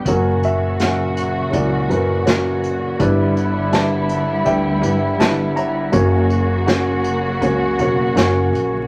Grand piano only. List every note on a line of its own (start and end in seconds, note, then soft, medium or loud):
0.00 0.11 G5 medium
0.07 2.98 F#1 medium
0.07 2.98 F#2 soft
0.07 0.52 F#3 medium
0.07 0.53 A#3 medium
0.07 0.53 C#4 medium
0.07 0.80 A#4 medium
0.07 0.82 C#5 medium
0.07 0.45 F#5 medium
0.45 0.82 E5 medium
0.80 1.26 F#3 medium
0.80 1.26 A#3 medium
0.80 1.26 C#4 medium
0.80 1.27 A#4 medium
0.80 2.24 C#5 medium
0.80 1.51 F#5 medium
1.51 1.75 F#3 medium
1.51 1.76 A#3 medium
1.51 1.75 C#4 medium
1.51 1.76 E4 medium
1.51 1.89 A#4 medium
1.51 1.92 D5 medium
1.55 2.25 F#4 medium
1.89 2.13 F#3 medium
1.89 2.13 A#3 medium
1.89 2.14 C#4 medium
1.89 2.13 A#4 medium
1.89 2.25 B4 medium
2.26 2.72 F#3 medium
2.26 2.73 A#3 medium
2.26 2.73 C#4 medium
2.26 2.96 F#4 medium
2.26 2.97 A#4 medium
2.26 3.02 C#5 medium
2.99 5.89 G1 medium
2.99 5.89 G2 medium
2.99 3.45 G3 medium
2.99 3.46 D4 medium
2.99 3.46 E4 medium
2.99 3.47 B4 loud
2.99 3.73 D5 medium
3.72 4.18 G3 medium
3.72 4.19 D4 medium
3.72 4.19 E4 medium
3.72 4.19 B4 medium
3.72 5.17 D5 medium
3.72 4.46 E5 medium
3.72 4.49 A5 medium
4.44 4.68 G3 medium
4.44 4.69 D4 medium
4.44 4.69 E4 medium
4.44 4.69 B4 medium
4.44 5.90 E5 medium
4.44 5.22 G5 medium
4.81 5.05 G3 medium
4.81 5.05 D4 medium
4.81 5.06 E4 medium
4.81 5.06 B4 medium
5.18 5.65 G3 medium
5.18 5.65 D4 medium
5.18 5.65 E4 medium
5.18 5.66 B4 medium
5.18 5.58 A5 medium
5.56 5.92 C#5 medium
5.56 8.51 F#5 medium
5.56 8.50 A#5 medium
5.92 8.87 F#1 medium
5.92 8.87 F#2 medium
5.92 6.39 A#3 medium
5.92 6.39 C#4 medium
5.92 6.39 F#4 medium
5.92 6.39 C#5 medium
6.67 7.13 A#3 medium
6.67 7.13 C#4 medium
6.67 7.14 F#4 medium
6.67 7.14 C#5 medium
7.41 7.65 A#3 medium
7.41 7.65 C#4 medium
7.41 7.65 F#4 medium
7.41 7.66 C#5 medium
7.80 8.03 A#3 medium
7.80 8.03 C#4 medium
7.80 8.04 F#4 medium
7.80 8.04 C#5 medium
8.16 8.63 A#3 medium
8.16 8.63 C#4 medium
8.16 8.63 F#4 medium
8.16 8.64 C#5 medium